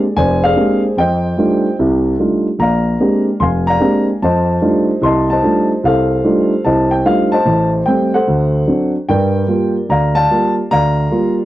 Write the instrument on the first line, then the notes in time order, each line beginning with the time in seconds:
grand piano
Already playing: G#4 D5
0.17 F1 C5 D5 G#5
0.44 G#4 D5 F5
0.56 G#3 A#3 C4 D4 G4
0.97 F2 C5 D#5 G5
1.37 G3 A3 D4 D#4 F4
1.79 C2 C3
2.19 G3 A3 D4 D#4 F4
2.59 A#1 D5 F5 A#5
3.00 G#3 A#3 C4 D4 G4
3.40 F1 F5 G#5 C6
3.67 D5 F5 A#5
3.80 G#3 A#3 C4 D4 G4
4.22 F2 C5 D#5 A5
4.61 G3 A3 D4 D#4 F4
5.02 C2 D#5 A5 C6
5.30 C5 D#5 A5
5.43 G3 A3 D4 D#4 F4
5.84 C2 A4 C5 F5
6.24 G3 A3 D4 D#4 F4
6.65 C2 C5 D#5 A5
6.91 G5
7.05 G3 A3 D4 D#4 F4 F5
7.32 C5 D#5 A5
7.45 A1 A2
7.86 G3 A3 C4 G5
8.14 A4 C5 F#5
8.27 D2
8.67 F#3 C4 D4
9.09 G2 A#4 D5 G5
9.48 G3 A#3 F4
9.89 D2 D5 F5 A#5
10.15 D5 F5 A5
10.30 G3 A#3 F4
10.71 D2 D5 F5 A#5
11.11 G3 A#3 F4